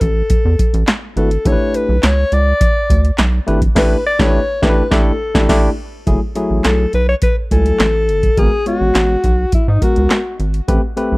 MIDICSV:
0, 0, Header, 1, 5, 480
1, 0, Start_track
1, 0, Tempo, 576923
1, 1211, Time_signature, 4, 2, 24, 8
1, 9299, End_track
2, 0, Start_track
2, 0, Title_t, "Alto saxophone"
2, 0, Program_c, 0, 65
2, 12, Note_on_c, 0, 69, 86
2, 732, Note_off_c, 0, 69, 0
2, 985, Note_on_c, 0, 69, 87
2, 1224, Note_on_c, 0, 73, 108
2, 1236, Note_off_c, 0, 69, 0
2, 1465, Note_on_c, 0, 71, 91
2, 1477, Note_off_c, 0, 73, 0
2, 1708, Note_on_c, 0, 73, 104
2, 1720, Note_off_c, 0, 71, 0
2, 1949, Note_on_c, 0, 74, 112
2, 1961, Note_off_c, 0, 73, 0
2, 2660, Note_off_c, 0, 74, 0
2, 3147, Note_on_c, 0, 71, 107
2, 3363, Note_off_c, 0, 71, 0
2, 3383, Note_on_c, 0, 74, 107
2, 3504, Note_on_c, 0, 73, 103
2, 3517, Note_off_c, 0, 74, 0
2, 3854, Note_off_c, 0, 73, 0
2, 3859, Note_on_c, 0, 71, 91
2, 4078, Note_off_c, 0, 71, 0
2, 4098, Note_on_c, 0, 69, 87
2, 4781, Note_off_c, 0, 69, 0
2, 5537, Note_on_c, 0, 69, 94
2, 5758, Note_off_c, 0, 69, 0
2, 5780, Note_on_c, 0, 71, 99
2, 5888, Note_off_c, 0, 71, 0
2, 5898, Note_on_c, 0, 73, 95
2, 5950, Note_off_c, 0, 73, 0
2, 6018, Note_on_c, 0, 71, 89
2, 6124, Note_off_c, 0, 71, 0
2, 6260, Note_on_c, 0, 69, 112
2, 6978, Note_on_c, 0, 68, 111
2, 6990, Note_off_c, 0, 69, 0
2, 7214, Note_off_c, 0, 68, 0
2, 7220, Note_on_c, 0, 66, 96
2, 7902, Note_off_c, 0, 66, 0
2, 7943, Note_on_c, 0, 64, 83
2, 8049, Note_off_c, 0, 64, 0
2, 8066, Note_on_c, 0, 63, 79
2, 8171, Note_off_c, 0, 63, 0
2, 8187, Note_on_c, 0, 66, 83
2, 8626, Note_off_c, 0, 66, 0
2, 9299, End_track
3, 0, Start_track
3, 0, Title_t, "Tine electric piano"
3, 0, Program_c, 1, 4
3, 970, Note_on_c, 1, 57, 74
3, 970, Note_on_c, 1, 62, 69
3, 973, Note_on_c, 1, 64, 71
3, 975, Note_on_c, 1, 66, 67
3, 975, Note_on_c, 1, 71, 82
3, 1071, Note_off_c, 1, 57, 0
3, 1072, Note_off_c, 1, 62, 0
3, 1073, Note_off_c, 1, 64, 0
3, 1074, Note_off_c, 1, 66, 0
3, 1074, Note_off_c, 1, 71, 0
3, 1208, Note_on_c, 1, 57, 78
3, 1208, Note_on_c, 1, 62, 72
3, 1211, Note_on_c, 1, 64, 73
3, 1211, Note_on_c, 1, 67, 74
3, 1214, Note_on_c, 1, 69, 74
3, 1266, Note_off_c, 1, 69, 0
3, 1267, Note_on_c, 1, 71, 94
3, 1613, Note_off_c, 1, 57, 0
3, 1613, Note_off_c, 1, 62, 0
3, 1615, Note_off_c, 1, 64, 0
3, 1615, Note_off_c, 1, 67, 0
3, 1643, Note_off_c, 1, 71, 0
3, 2886, Note_on_c, 1, 57, 88
3, 2889, Note_on_c, 1, 62, 77
3, 2889, Note_on_c, 1, 64, 87
3, 2892, Note_on_c, 1, 67, 84
3, 2894, Note_on_c, 1, 71, 106
3, 2989, Note_off_c, 1, 57, 0
3, 2991, Note_off_c, 1, 62, 0
3, 2991, Note_off_c, 1, 64, 0
3, 2992, Note_off_c, 1, 67, 0
3, 2993, Note_off_c, 1, 71, 0
3, 3124, Note_on_c, 1, 57, 105
3, 3127, Note_on_c, 1, 62, 105
3, 3129, Note_on_c, 1, 64, 112
3, 3130, Note_on_c, 1, 67, 100
3, 3186, Note_on_c, 1, 71, 107
3, 3290, Note_off_c, 1, 57, 0
3, 3292, Note_off_c, 1, 62, 0
3, 3293, Note_off_c, 1, 64, 0
3, 3293, Note_off_c, 1, 67, 0
3, 3326, Note_off_c, 1, 71, 0
3, 3484, Note_on_c, 1, 57, 103
3, 3488, Note_on_c, 1, 62, 100
3, 3488, Note_on_c, 1, 64, 104
3, 3491, Note_on_c, 1, 67, 104
3, 3546, Note_on_c, 1, 71, 104
3, 3650, Note_off_c, 1, 57, 0
3, 3653, Note_off_c, 1, 62, 0
3, 3653, Note_off_c, 1, 64, 0
3, 3654, Note_off_c, 1, 67, 0
3, 3686, Note_off_c, 1, 71, 0
3, 3845, Note_on_c, 1, 57, 106
3, 3846, Note_on_c, 1, 62, 103
3, 3849, Note_on_c, 1, 64, 108
3, 3850, Note_on_c, 1, 67, 108
3, 3906, Note_on_c, 1, 71, 116
3, 4011, Note_off_c, 1, 57, 0
3, 4011, Note_off_c, 1, 62, 0
3, 4013, Note_off_c, 1, 64, 0
3, 4014, Note_off_c, 1, 67, 0
3, 4046, Note_off_c, 1, 71, 0
3, 4085, Note_on_c, 1, 57, 111
3, 4087, Note_on_c, 1, 62, 109
3, 4090, Note_on_c, 1, 64, 111
3, 4091, Note_on_c, 1, 67, 109
3, 4093, Note_on_c, 1, 74, 105
3, 4251, Note_off_c, 1, 57, 0
3, 4252, Note_off_c, 1, 62, 0
3, 4253, Note_off_c, 1, 64, 0
3, 4254, Note_off_c, 1, 67, 0
3, 4255, Note_off_c, 1, 74, 0
3, 4446, Note_on_c, 1, 57, 93
3, 4448, Note_on_c, 1, 62, 98
3, 4449, Note_on_c, 1, 64, 103
3, 4450, Note_on_c, 1, 67, 94
3, 4452, Note_on_c, 1, 74, 84
3, 4550, Note_off_c, 1, 57, 0
3, 4551, Note_off_c, 1, 62, 0
3, 4552, Note_off_c, 1, 64, 0
3, 4553, Note_off_c, 1, 67, 0
3, 4553, Note_off_c, 1, 74, 0
3, 4568, Note_on_c, 1, 57, 104
3, 4571, Note_on_c, 1, 62, 108
3, 4571, Note_on_c, 1, 64, 101
3, 4573, Note_on_c, 1, 67, 97
3, 4575, Note_on_c, 1, 74, 104
3, 4732, Note_off_c, 1, 57, 0
3, 4734, Note_off_c, 1, 62, 0
3, 4734, Note_off_c, 1, 64, 0
3, 4735, Note_off_c, 1, 67, 0
3, 4736, Note_off_c, 1, 74, 0
3, 5047, Note_on_c, 1, 54, 82
3, 5050, Note_on_c, 1, 57, 85
3, 5053, Note_on_c, 1, 64, 80
3, 5053, Note_on_c, 1, 68, 99
3, 5150, Note_off_c, 1, 54, 0
3, 5151, Note_off_c, 1, 57, 0
3, 5153, Note_off_c, 1, 64, 0
3, 5153, Note_off_c, 1, 68, 0
3, 5288, Note_on_c, 1, 54, 92
3, 5291, Note_on_c, 1, 57, 88
3, 5293, Note_on_c, 1, 64, 80
3, 5294, Note_on_c, 1, 68, 92
3, 5693, Note_off_c, 1, 54, 0
3, 5695, Note_off_c, 1, 57, 0
3, 5695, Note_off_c, 1, 64, 0
3, 5696, Note_off_c, 1, 68, 0
3, 6247, Note_on_c, 1, 54, 65
3, 6251, Note_on_c, 1, 57, 61
3, 6252, Note_on_c, 1, 64, 57
3, 6255, Note_on_c, 1, 80, 72
3, 6552, Note_off_c, 1, 54, 0
3, 6553, Note_off_c, 1, 57, 0
3, 6554, Note_off_c, 1, 64, 0
3, 6556, Note_off_c, 1, 80, 0
3, 6965, Note_on_c, 1, 56, 74
3, 6967, Note_on_c, 1, 59, 73
3, 6967, Note_on_c, 1, 66, 68
3, 6969, Note_on_c, 1, 70, 82
3, 7069, Note_off_c, 1, 56, 0
3, 7070, Note_off_c, 1, 59, 0
3, 7070, Note_off_c, 1, 66, 0
3, 7071, Note_off_c, 1, 70, 0
3, 7205, Note_on_c, 1, 56, 74
3, 7208, Note_on_c, 1, 59, 62
3, 7209, Note_on_c, 1, 66, 68
3, 7212, Note_on_c, 1, 73, 84
3, 7611, Note_off_c, 1, 56, 0
3, 7613, Note_off_c, 1, 59, 0
3, 7613, Note_off_c, 1, 66, 0
3, 7615, Note_off_c, 1, 73, 0
3, 8165, Note_on_c, 1, 56, 63
3, 8166, Note_on_c, 1, 59, 57
3, 8170, Note_on_c, 1, 66, 64
3, 8170, Note_on_c, 1, 70, 73
3, 8470, Note_off_c, 1, 56, 0
3, 8471, Note_off_c, 1, 59, 0
3, 8473, Note_off_c, 1, 66, 0
3, 8473, Note_off_c, 1, 70, 0
3, 8885, Note_on_c, 1, 57, 91
3, 8888, Note_on_c, 1, 60, 83
3, 8889, Note_on_c, 1, 71, 102
3, 8890, Note_on_c, 1, 67, 89
3, 8989, Note_off_c, 1, 57, 0
3, 8990, Note_off_c, 1, 60, 0
3, 8991, Note_off_c, 1, 67, 0
3, 8991, Note_off_c, 1, 71, 0
3, 9123, Note_on_c, 1, 57, 92
3, 9127, Note_on_c, 1, 60, 78
3, 9128, Note_on_c, 1, 67, 86
3, 9131, Note_on_c, 1, 71, 106
3, 9299, Note_off_c, 1, 57, 0
3, 9299, Note_off_c, 1, 60, 0
3, 9299, Note_off_c, 1, 67, 0
3, 9299, Note_off_c, 1, 71, 0
3, 9299, End_track
4, 0, Start_track
4, 0, Title_t, "Analog synth bass"
4, 0, Program_c, 2, 38
4, 10, Note_on_c, 2, 33, 97
4, 186, Note_off_c, 2, 33, 0
4, 252, Note_on_c, 2, 40, 46
4, 299, Note_off_c, 2, 40, 0
4, 375, Note_on_c, 2, 40, 92
4, 461, Note_off_c, 2, 40, 0
4, 613, Note_on_c, 2, 33, 105
4, 700, Note_off_c, 2, 33, 0
4, 969, Note_on_c, 2, 32, 105
4, 1145, Note_off_c, 2, 32, 0
4, 1212, Note_on_c, 2, 33, 111
4, 1299, Note_off_c, 2, 33, 0
4, 1570, Note_on_c, 2, 35, 92
4, 1658, Note_off_c, 2, 35, 0
4, 1693, Note_on_c, 2, 37, 98
4, 1868, Note_off_c, 2, 37, 0
4, 1932, Note_on_c, 2, 37, 103
4, 2107, Note_off_c, 2, 37, 0
4, 2412, Note_on_c, 2, 38, 94
4, 2587, Note_off_c, 2, 38, 0
4, 2654, Note_on_c, 2, 35, 104
4, 2828, Note_off_c, 2, 35, 0
4, 2896, Note_on_c, 2, 32, 106
4, 3069, Note_off_c, 2, 32, 0
4, 3129, Note_on_c, 2, 33, 101
4, 3293, Note_off_c, 2, 33, 0
4, 3490, Note_on_c, 2, 33, 109
4, 3654, Note_off_c, 2, 33, 0
4, 3850, Note_on_c, 2, 33, 117
4, 4014, Note_off_c, 2, 33, 0
4, 4090, Note_on_c, 2, 33, 99
4, 4254, Note_off_c, 2, 33, 0
4, 4451, Note_on_c, 2, 33, 110
4, 4553, Note_off_c, 2, 33, 0
4, 4571, Note_on_c, 2, 33, 102
4, 4734, Note_off_c, 2, 33, 0
4, 5051, Note_on_c, 2, 30, 107
4, 5138, Note_off_c, 2, 30, 0
4, 5410, Note_on_c, 2, 33, 89
4, 5498, Note_off_c, 2, 33, 0
4, 5533, Note_on_c, 2, 35, 97
4, 5708, Note_off_c, 2, 35, 0
4, 5771, Note_on_c, 2, 35, 102
4, 5947, Note_off_c, 2, 35, 0
4, 6252, Note_on_c, 2, 37, 86
4, 6427, Note_off_c, 2, 37, 0
4, 6489, Note_on_c, 2, 33, 94
4, 6728, Note_on_c, 2, 31, 99
4, 6740, Note_off_c, 2, 33, 0
4, 6904, Note_off_c, 2, 31, 0
4, 6969, Note_on_c, 2, 32, 111
4, 7058, Note_off_c, 2, 32, 0
4, 7329, Note_on_c, 2, 33, 89
4, 7417, Note_off_c, 2, 33, 0
4, 7448, Note_on_c, 2, 33, 100
4, 7624, Note_off_c, 2, 33, 0
4, 7689, Note_on_c, 2, 35, 104
4, 7865, Note_off_c, 2, 35, 0
4, 7927, Note_on_c, 2, 44, 46
4, 7976, Note_off_c, 2, 44, 0
4, 8053, Note_on_c, 2, 44, 104
4, 8140, Note_off_c, 2, 44, 0
4, 8297, Note_on_c, 2, 37, 88
4, 8382, Note_off_c, 2, 37, 0
4, 8649, Note_on_c, 2, 32, 94
4, 8825, Note_off_c, 2, 32, 0
4, 8891, Note_on_c, 2, 33, 107
4, 8979, Note_off_c, 2, 33, 0
4, 9252, Note_on_c, 2, 35, 96
4, 9299, Note_off_c, 2, 35, 0
4, 9299, End_track
5, 0, Start_track
5, 0, Title_t, "Drums"
5, 8, Note_on_c, 9, 42, 82
5, 11, Note_on_c, 9, 36, 93
5, 91, Note_off_c, 9, 42, 0
5, 94, Note_off_c, 9, 36, 0
5, 247, Note_on_c, 9, 42, 104
5, 250, Note_on_c, 9, 36, 110
5, 330, Note_off_c, 9, 42, 0
5, 333, Note_off_c, 9, 36, 0
5, 492, Note_on_c, 9, 36, 95
5, 493, Note_on_c, 9, 42, 79
5, 575, Note_off_c, 9, 36, 0
5, 577, Note_off_c, 9, 42, 0
5, 615, Note_on_c, 9, 42, 48
5, 698, Note_off_c, 9, 42, 0
5, 725, Note_on_c, 9, 39, 96
5, 729, Note_on_c, 9, 42, 93
5, 730, Note_on_c, 9, 38, 121
5, 808, Note_off_c, 9, 39, 0
5, 812, Note_off_c, 9, 42, 0
5, 814, Note_off_c, 9, 38, 0
5, 972, Note_on_c, 9, 42, 58
5, 1055, Note_off_c, 9, 42, 0
5, 1091, Note_on_c, 9, 42, 60
5, 1174, Note_off_c, 9, 42, 0
5, 1210, Note_on_c, 9, 42, 77
5, 1211, Note_on_c, 9, 36, 107
5, 1293, Note_off_c, 9, 42, 0
5, 1294, Note_off_c, 9, 36, 0
5, 1450, Note_on_c, 9, 42, 75
5, 1534, Note_off_c, 9, 42, 0
5, 1687, Note_on_c, 9, 39, 90
5, 1690, Note_on_c, 9, 42, 102
5, 1692, Note_on_c, 9, 38, 118
5, 1770, Note_off_c, 9, 39, 0
5, 1773, Note_off_c, 9, 42, 0
5, 1775, Note_off_c, 9, 38, 0
5, 1930, Note_on_c, 9, 42, 76
5, 2013, Note_off_c, 9, 42, 0
5, 2170, Note_on_c, 9, 36, 127
5, 2171, Note_on_c, 9, 42, 103
5, 2253, Note_off_c, 9, 36, 0
5, 2254, Note_off_c, 9, 42, 0
5, 2411, Note_on_c, 9, 36, 90
5, 2415, Note_on_c, 9, 42, 81
5, 2495, Note_off_c, 9, 36, 0
5, 2498, Note_off_c, 9, 42, 0
5, 2535, Note_on_c, 9, 42, 50
5, 2618, Note_off_c, 9, 42, 0
5, 2645, Note_on_c, 9, 39, 101
5, 2649, Note_on_c, 9, 42, 99
5, 2650, Note_on_c, 9, 38, 127
5, 2728, Note_off_c, 9, 39, 0
5, 2732, Note_off_c, 9, 42, 0
5, 2733, Note_off_c, 9, 38, 0
5, 2893, Note_on_c, 9, 42, 59
5, 2976, Note_off_c, 9, 42, 0
5, 3009, Note_on_c, 9, 36, 94
5, 3010, Note_on_c, 9, 42, 60
5, 3092, Note_off_c, 9, 36, 0
5, 3093, Note_off_c, 9, 42, 0
5, 3128, Note_on_c, 9, 49, 85
5, 3129, Note_on_c, 9, 36, 107
5, 3130, Note_on_c, 9, 38, 105
5, 3211, Note_off_c, 9, 49, 0
5, 3212, Note_off_c, 9, 36, 0
5, 3214, Note_off_c, 9, 38, 0
5, 3489, Note_on_c, 9, 36, 121
5, 3490, Note_on_c, 9, 38, 107
5, 3572, Note_off_c, 9, 36, 0
5, 3573, Note_off_c, 9, 38, 0
5, 3849, Note_on_c, 9, 36, 115
5, 3849, Note_on_c, 9, 38, 102
5, 3932, Note_off_c, 9, 36, 0
5, 3933, Note_off_c, 9, 38, 0
5, 4089, Note_on_c, 9, 36, 113
5, 4089, Note_on_c, 9, 38, 114
5, 4172, Note_off_c, 9, 36, 0
5, 4172, Note_off_c, 9, 38, 0
5, 4450, Note_on_c, 9, 36, 124
5, 4451, Note_on_c, 9, 38, 123
5, 4533, Note_off_c, 9, 36, 0
5, 4534, Note_off_c, 9, 38, 0
5, 4570, Note_on_c, 9, 36, 121
5, 4570, Note_on_c, 9, 49, 85
5, 4572, Note_on_c, 9, 38, 112
5, 4653, Note_off_c, 9, 36, 0
5, 4653, Note_off_c, 9, 49, 0
5, 4655, Note_off_c, 9, 38, 0
5, 5049, Note_on_c, 9, 42, 79
5, 5050, Note_on_c, 9, 36, 109
5, 5132, Note_off_c, 9, 42, 0
5, 5133, Note_off_c, 9, 36, 0
5, 5287, Note_on_c, 9, 42, 72
5, 5370, Note_off_c, 9, 42, 0
5, 5525, Note_on_c, 9, 39, 91
5, 5528, Note_on_c, 9, 42, 95
5, 5530, Note_on_c, 9, 38, 110
5, 5608, Note_off_c, 9, 39, 0
5, 5612, Note_off_c, 9, 42, 0
5, 5614, Note_off_c, 9, 38, 0
5, 5766, Note_on_c, 9, 42, 75
5, 5849, Note_off_c, 9, 42, 0
5, 6004, Note_on_c, 9, 42, 98
5, 6008, Note_on_c, 9, 36, 111
5, 6087, Note_off_c, 9, 42, 0
5, 6092, Note_off_c, 9, 36, 0
5, 6250, Note_on_c, 9, 36, 83
5, 6250, Note_on_c, 9, 42, 82
5, 6333, Note_off_c, 9, 36, 0
5, 6333, Note_off_c, 9, 42, 0
5, 6371, Note_on_c, 9, 42, 50
5, 6454, Note_off_c, 9, 42, 0
5, 6484, Note_on_c, 9, 39, 97
5, 6488, Note_on_c, 9, 42, 89
5, 6489, Note_on_c, 9, 38, 127
5, 6567, Note_off_c, 9, 39, 0
5, 6571, Note_off_c, 9, 42, 0
5, 6573, Note_off_c, 9, 38, 0
5, 6729, Note_on_c, 9, 42, 62
5, 6813, Note_off_c, 9, 42, 0
5, 6848, Note_on_c, 9, 42, 57
5, 6849, Note_on_c, 9, 36, 90
5, 6931, Note_off_c, 9, 42, 0
5, 6932, Note_off_c, 9, 36, 0
5, 6968, Note_on_c, 9, 42, 76
5, 6969, Note_on_c, 9, 36, 111
5, 7051, Note_off_c, 9, 42, 0
5, 7052, Note_off_c, 9, 36, 0
5, 7206, Note_on_c, 9, 42, 70
5, 7289, Note_off_c, 9, 42, 0
5, 7444, Note_on_c, 9, 39, 88
5, 7447, Note_on_c, 9, 42, 101
5, 7449, Note_on_c, 9, 38, 108
5, 7527, Note_off_c, 9, 39, 0
5, 7530, Note_off_c, 9, 42, 0
5, 7532, Note_off_c, 9, 38, 0
5, 7685, Note_on_c, 9, 42, 74
5, 7688, Note_on_c, 9, 36, 84
5, 7769, Note_off_c, 9, 42, 0
5, 7771, Note_off_c, 9, 36, 0
5, 7923, Note_on_c, 9, 42, 93
5, 7926, Note_on_c, 9, 36, 114
5, 8006, Note_off_c, 9, 42, 0
5, 8010, Note_off_c, 9, 36, 0
5, 8168, Note_on_c, 9, 36, 90
5, 8169, Note_on_c, 9, 42, 80
5, 8252, Note_off_c, 9, 36, 0
5, 8253, Note_off_c, 9, 42, 0
5, 8288, Note_on_c, 9, 42, 47
5, 8372, Note_off_c, 9, 42, 0
5, 8403, Note_on_c, 9, 39, 104
5, 8407, Note_on_c, 9, 42, 95
5, 8408, Note_on_c, 9, 38, 127
5, 8486, Note_off_c, 9, 39, 0
5, 8490, Note_off_c, 9, 42, 0
5, 8492, Note_off_c, 9, 38, 0
5, 8650, Note_on_c, 9, 42, 58
5, 8733, Note_off_c, 9, 42, 0
5, 8769, Note_on_c, 9, 42, 53
5, 8852, Note_off_c, 9, 42, 0
5, 8889, Note_on_c, 9, 36, 110
5, 8889, Note_on_c, 9, 42, 78
5, 8972, Note_off_c, 9, 36, 0
5, 8972, Note_off_c, 9, 42, 0
5, 9127, Note_on_c, 9, 42, 72
5, 9211, Note_off_c, 9, 42, 0
5, 9299, End_track
0, 0, End_of_file